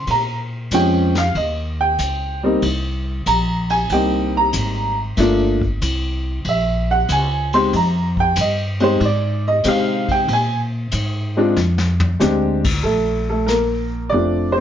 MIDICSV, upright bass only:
0, 0, Header, 1, 2, 480
1, 0, Start_track
1, 0, Tempo, 639659
1, 51, Time_signature, 4, 2, 24, 8
1, 10959, End_track
2, 0, Start_track
2, 0, Title_t, "Upright bass"
2, 0, Program_c, 0, 32
2, 55, Note_on_c, 0, 46, 85
2, 519, Note_off_c, 0, 46, 0
2, 537, Note_on_c, 0, 41, 85
2, 1000, Note_off_c, 0, 41, 0
2, 1014, Note_on_c, 0, 39, 89
2, 1478, Note_off_c, 0, 39, 0
2, 1492, Note_on_c, 0, 37, 80
2, 1957, Note_off_c, 0, 37, 0
2, 1968, Note_on_c, 0, 36, 85
2, 2435, Note_off_c, 0, 36, 0
2, 2448, Note_on_c, 0, 34, 84
2, 2915, Note_off_c, 0, 34, 0
2, 2925, Note_on_c, 0, 36, 86
2, 3393, Note_off_c, 0, 36, 0
2, 3406, Note_on_c, 0, 32, 88
2, 3873, Note_off_c, 0, 32, 0
2, 3885, Note_on_c, 0, 31, 90
2, 4352, Note_off_c, 0, 31, 0
2, 4365, Note_on_c, 0, 36, 94
2, 4832, Note_off_c, 0, 36, 0
2, 4838, Note_on_c, 0, 34, 84
2, 5308, Note_off_c, 0, 34, 0
2, 5319, Note_on_c, 0, 37, 91
2, 5789, Note_off_c, 0, 37, 0
2, 5801, Note_on_c, 0, 41, 89
2, 6269, Note_off_c, 0, 41, 0
2, 6280, Note_on_c, 0, 43, 94
2, 6748, Note_off_c, 0, 43, 0
2, 6756, Note_on_c, 0, 44, 97
2, 7226, Note_off_c, 0, 44, 0
2, 7239, Note_on_c, 0, 48, 93
2, 7708, Note_off_c, 0, 48, 0
2, 7714, Note_on_c, 0, 46, 94
2, 8185, Note_off_c, 0, 46, 0
2, 8199, Note_on_c, 0, 44, 88
2, 8668, Note_off_c, 0, 44, 0
2, 8677, Note_on_c, 0, 41, 97
2, 9147, Note_off_c, 0, 41, 0
2, 9156, Note_on_c, 0, 38, 99
2, 9627, Note_off_c, 0, 38, 0
2, 9639, Note_on_c, 0, 34, 74
2, 10574, Note_off_c, 0, 34, 0
2, 10597, Note_on_c, 0, 29, 78
2, 10959, Note_off_c, 0, 29, 0
2, 10959, End_track
0, 0, End_of_file